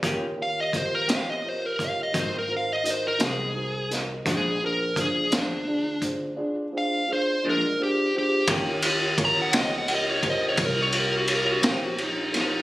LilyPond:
<<
  \new Staff \with { instrumentName = "Lead electric guitar" } { \time 12/8 \key ees \mixolydian \tempo 4. = 57 r8 f''16 ees''16 c''16 bes'16 f''16 ees''16 c''16 bes'16 f''16 ees''16 c''16 bes'16 f''16 ees''16 c''16 bes'16 aes'4 r8 | aes'8 bes'8 aes'8 d'4 r4 f''8 c''8 bes'8 g'8 g'8 | r4 bes''16 ges''16 ees''16 ges''16 ees''16 des''16 ees''16 des''16 bes'16 des''16 bes'16 ges'16 bes'16 ges'16 ees'16 ges'16 ees'8 ees'8 | }
  \new Staff \with { instrumentName = "Grand piano" } { \time 12/8 \key ees \mixolydian <f' g' bes' des''>8 <f' g' bes' des''>8 <f' g' bes' c''>8 <f' g' bes' ees''>8 <f' g' bes' des''>8 <f' g' bes' des''>8 <ees' ges' bes' c''>8 <ees' ges' bes' c''>8 <ees' ges' bes' ees''>8 <ees' ges' bes' ees''>8 <ees' ges' bes' c''>8 <ees' ges' bes' ees''>8 | <d' f' aes' c''>8 <d' f' aes' c''>8 <d' f' aes' c''>8 <d' f' aes' c''>8 <d' f' aes' d''>8 <d' f' aes' c''>8 <d' f' aes' d''>8 <d' f' aes' c''>8 <d' f' aes' c''>8 <d' f' aes' bes'>8 <d' f' aes' c''>8 <d' f' aes' c''>8 | <f' g' bes' des''>8 <f' g' bes' des''>8 <f' g' bes' des''>8 <f' g' bes' ees''>8 <f' g' bes' des''>8 <f' g' bes' c''>8 <f' g' bes' des''>8 <f' g' bes' des''>8 <f' g' bes' des''>8 <f' g' bes' c''>8 <f' g' bes' des''>8 <f' g' bes' des''>8 | }
  \new Staff \with { instrumentName = "Clean electric guitar" } { \time 12/8 \key ees \mixolydian <ees bes des' g'>8 r4 <ees bes des' g'>8 r4 <aes, ges c' ees'>8 r4 <aes, ges c' ees'>8 r4 | <bes, f aes d'>8 r4 <bes, f aes d'>8 r2 r8 <bes, f aes d'>8 r4 | <ees bes des' g'>8 r4 <ees bes des' g'>8 r2 r8 <ees bes des' g'>8 r4 | }
  \new Staff \with { instrumentName = "Upright bass" } { \clef bass \time 12/8 \key ees \mixolydian ees,4. bes,,4. aes,,4. c,4. | bes,,4. d,4. r2. | ees,4. des,4. c,4. bes,,4. | }
  \new DrumStaff \with { instrumentName = "Drums" } \drummode { \time 12/8 <hh bd>4 <hh bd>8 <hh sn>4 <hh bd>8 <hh bd>4 hh8 <hh sn>4 <hh sn>8 | <hh bd>4 <hh bd>8 <hh sn>4 <hh bd>8 r4. r4. | <bd cymr>8 cymr8 <bd cymr>8 <cymr sn>8 cymr8 <bd cymr>8 <bd cymr>8 cymr8 cymr8 <cymr sn>8 cymr8 <cymr sn>8 | }
>>